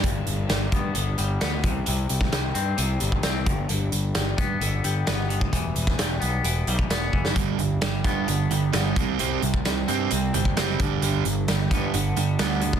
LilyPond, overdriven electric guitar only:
\new Staff \with { instrumentName = "Overdriven electric guitar" } { \clef bass \time 4/4 \key g \major \tempo 4 = 131 r1 | r1 | r1 | r1 |
<g, d g>8 <g, d>8 <g, d>8 <g, d g>8 <g, d>8 <g, d>8 <g, d g>8 <c g c'>8 | <c g c'>8 <c g>8 <c g>8 <c g c'>8 <c g>8 <c g>8 <c g c'>8 <g, d g>8 | <g, d g>8 <g, d>8 <g, d>8 <g, d g>8 <g, d>8 <g, d>8 <g, d g>8 <g, d>8 | }